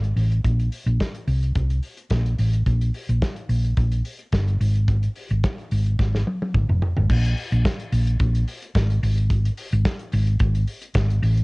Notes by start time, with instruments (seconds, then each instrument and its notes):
Already playing: fingered electric bass G#1
0.04 closed hi-hat
0.16 fingered electric bass A1, open hi-hat
0.32 closed hi-hat
0.44 fingered electric bass A#1, kick, closed hi-hat
0.59 closed hi-hat
0.72 open hi-hat
0.86 fingered electric bass A#1, closed hi-hat
1.00 kick, snare, closed hi-hat
1.14 closed hi-hat
1.27 fingered electric bass C2, open hi-hat
1.43 closed hi-hat
1.55 fingered electric bass C2, kick, closed hi-hat
1.70 closed hi-hat
1.83 open hi-hat
1.97 closed hi-hat
2.10 fingered electric bass A#1, kick, snare, closed hi-hat
2.26 closed hi-hat
2.38 fingered electric bass A1, open hi-hat
2.53 closed hi-hat
2.66 fingered electric bass A#1, kick, closed hi-hat
2.81 closed hi-hat
2.94 open hi-hat
3.09 fingered electric bass A#1, closed hi-hat
3.22 kick, snare, closed hi-hat
3.36 closed hi-hat
3.49 fingered electric bass A#1, open hi-hat
3.65 closed hi-hat
3.77 fingered electric bass A#1, kick, closed hi-hat
3.92 closed hi-hat
4.05 open hi-hat
4.19 closed hi-hat
4.32 fingered electric bass G1, kick, snare, closed hi-hat
4.48 closed hi-hat
4.60 fingered electric bass G#1, open hi-hat
4.75 closed hi-hat
4.88 kick, closed hi-hat
5.03 closed hi-hat
5.16 open hi-hat
5.30 fingered electric bass G#1, closed hi-hat
5.44 kick, snare, closed hi-hat
5.58 closed hi-hat
5.71 fingered electric bass G#1, open hi-hat
5.86 closed hi-hat
5.99 fingered electric bass G#1, kick, snare
6.15 snare
6.27 high tom
6.42 high tom
6.54 fingered electric bass G#1, kick, mid tom
6.69 fingered electric bass F1, mid tom
6.82 floor tom
6.97 fingered electric bass G#1, floor tom
7.10 fingered electric bass A#1, kick, crash
7.25 closed hi-hat
7.37 open hi-hat
7.52 fingered electric bass A#1, closed hi-hat
7.65 kick, snare, closed hi-hat
7.80 closed hi-hat
7.92 fingered electric bass A#1, open hi-hat
8.07 closed hi-hat
8.20 fingered electric bass A#1, kick, closed hi-hat
8.35 closed hi-hat
8.48 open hi-hat
8.62 closed hi-hat
8.75 fingered electric bass G#1, kick, snare, closed hi-hat
8.90 closed hi-hat
9.03 fingered electric bass G#1, open hi-hat
9.17 closed hi-hat
9.30 kick, closed hi-hat
9.45 closed hi-hat
9.57 open hi-hat
9.72 fingered electric bass G#1, closed hi-hat
9.85 kick, snare, closed hi-hat
9.99 closed hi-hat
10.12 fingered electric bass G#1, open hi-hat
10.27 closed hi-hat
10.39 fingered electric bass G#1, kick, closed hi-hat
10.55 closed hi-hat
10.67 open hi-hat
10.81 closed hi-hat
10.94 fingered electric bass G#1, kick, snare, closed hi-hat
11.10 closed hi-hat
11.22 fingered electric bass A1, open hi-hat
11.37 closed hi-hat